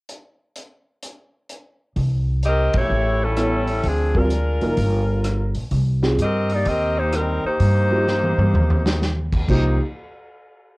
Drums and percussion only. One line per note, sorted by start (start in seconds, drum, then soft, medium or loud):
0.09 closed hi-hat soft
0.56 closed hi-hat soft
1.02 closed hi-hat medium
1.49 closed hi-hat medium
1.96 kick soft
1.96 open hi-hat soft
2.43 closed hi-hat soft
2.73 kick medium
2.73 ride medium
3.37 cross-stick medium
3.37 closed hi-hat medium
3.67 open hi-hat soft
3.83 kick soft
3.83 open hi-hat soft
4.15 kick medium
4.30 closed hi-hat soft
4.61 open hi-hat soft
4.77 kick soft
4.77 open hi-hat soft
5.24 cross-stick medium
5.24 closed hi-hat soft
5.55 open hi-hat soft
5.71 kick soft
5.71 open hi-hat soft
6.03 snare soft
6.19 closed hi-hat medium
6.50 open hi-hat soft
6.65 kick soft
6.65 open hi-hat soft
7.12 cross-stick medium
7.12 closed hi-hat medium
7.60 kick soft
7.60 open hi-hat soft
8.07 snare soft
8.23 high tom soft
8.39 high tom medium
8.55 floor tom medium
8.70 floor tom medium
8.86 snare medium
9.02 snare soft
9.33 kick medium
9.33 crash medium
9.49 kick medium
9.49 crash medium